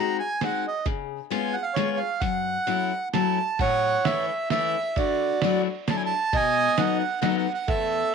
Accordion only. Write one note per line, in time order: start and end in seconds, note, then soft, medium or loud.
0.00 0.17 A#5 medium
0.20 0.42 G#5 medium
0.44 0.66 F#5 medium
0.68 0.86 D#5 medium
1.32 1.56 G#5 medium
1.53 1.65 F#5 medium
1.62 1.75 F5 medium
1.74 1.99 C#5 medium
1.97 2.21 F5 medium
2.20 3.09 F#5 medium
3.14 3.61 A5 medium
3.60 4.26 C#5 medium
3.60 4.07 F#5 medium
4.04 4.49 E5 medium
4.50 4.98 E5 medium
4.97 5.62 F#4 medium
4.97 5.62 D5 medium
5.90 5.96 A5 medium
5.96 6.03 G#5 medium
6.06 6.36 A5 loud
6.34 6.98 D#5 medium
6.34 6.81 G#5 loud
6.79 7.20 F#5 medium
7.22 7.36 F#5 medium
7.38 7.53 F#5 medium
7.54 7.69 F#5 medium
7.68 8.15 A4 medium
7.68 8.15 E5 medium